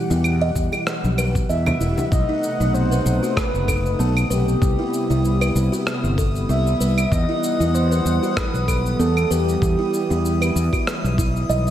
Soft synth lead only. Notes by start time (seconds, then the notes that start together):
1.49 E5
2.12 D#5
2.74 C5
3.37 B4
4.00 A4
4.30 G4
6.49 E5
7.12 D#5
7.74 C5
8.37 B4
9.00 A4
9.31 G4